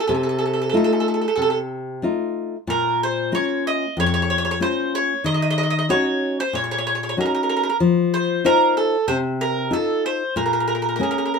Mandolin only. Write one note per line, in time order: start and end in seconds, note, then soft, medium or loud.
0.00 0.06 A4 soft
0.07 0.13 A4 soft
0.14 0.22 A4 soft
0.23 0.28 A4 soft
0.29 0.37 A4 soft
0.39 0.44 A4 soft
0.46 0.52 A4 soft
0.53 0.60 A4 soft
0.62 0.68 A4 soft
0.69 0.75 A4 soft
0.77 0.83 A4 soft
0.84 0.91 A4 soft
0.93 0.99 A4 soft
1.00 1.06 A4 soft
1.08 1.13 A4 soft
1.14 1.20 A4 soft
1.21 1.27 A4 soft
1.28 1.34 A4 soft
1.36 1.41 A4 soft
1.42 1.49 A4 soft
1.50 1.57 A4 soft
2.70 3.00 A#4 medium
3.03 3.34 C5 medium
3.35 3.65 C#5 medium
3.67 3.99 D#5 medium
4.00 4.05 C#5 medium
4.06 4.13 C#5 soft
4.14 4.21 C#5 medium
4.22 4.29 C#5 soft
4.30 4.36 C#5 medium
4.38 4.44 C#5 medium
4.45 4.50 C#5 medium
4.51 4.58 C#5 medium
4.62 4.92 C5 medium
4.95 5.24 C#5 medium
5.26 5.33 D#5 medium
5.34 5.41 D#5 soft
5.42 5.49 D#5 medium
5.50 5.56 D#5 medium
5.58 5.62 D#5 medium
5.63 5.69 D#5 soft
5.70 5.77 D#5 medium
5.79 5.85 D#5 medium
5.90 6.39 C#5 medium
6.40 6.55 C5 medium
6.55 6.61 C#5 medium
6.64 6.69 C#5 soft
6.71 6.77 C#5 medium
6.78 6.84 C#5 medium
6.87 6.92 C#5 medium
6.95 7.00 C#5 soft
7.03 7.08 C#5 soft
7.09 7.14 C#5 medium
7.21 7.24 A#4 medium
7.26 7.32 A#4 soft
7.35 7.40 A#4 soft
7.43 7.48 A#4 soft
7.49 7.55 A#4 medium
7.57 7.62 A#4 soft
7.63 7.68 A#4 soft
7.69 7.76 A#4 soft
8.14 8.45 C5 medium
8.46 8.77 A#4 medium
8.77 9.07 A4 medium
9.08 9.17 C5 medium
9.41 9.70 A#4 medium
9.73 10.05 A4 medium
10.06 10.36 C5 medium
10.37 10.44 A#4 medium
10.46 10.52 A#4 soft
10.53 10.59 A#4 soft
10.60 10.66 A#4 soft
10.68 10.74 A#4 medium
10.75 10.81 A#4 soft
10.82 10.87 A#4 soft
10.89 10.95 A#4 soft
10.96 11.02 A#4 soft
11.03 11.10 A#4 soft
11.11 11.17 A#4 soft
11.18 11.24 A#4 soft
11.25 11.33 A#4 soft
11.34 11.39 A#4 soft